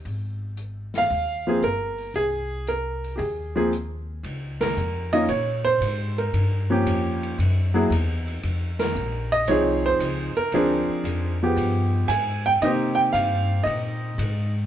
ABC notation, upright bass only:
X:1
M:4/4
L:1/8
Q:"Swing" 1/4=115
K:Ab
V:1 name="Upright bass" clef=bass
A,,,4 E,,2 G,,,2 | C,,4 E,,4 | D,,2 F,,2 B,,2 A,,2 | G,,2 F,,2 _G,,2 _F,,2 |
F,,2 B,,,2 C,,2 D,, z | =D,, z F,,2 G,,2 A,,2 | C,2 G,,2 B,,2 A,,2 |]